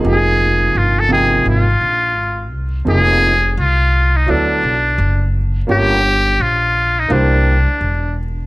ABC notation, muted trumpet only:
X:1
M:4/4
L:1/16
Q:"Swing 16ths" 1/4=85
K:Fdor
V:1 name="Muted trumpet"
A4 F =A _A2 F6 z2 | A4 F3 E D6 z2 | G4 F3 E D6 z2 |]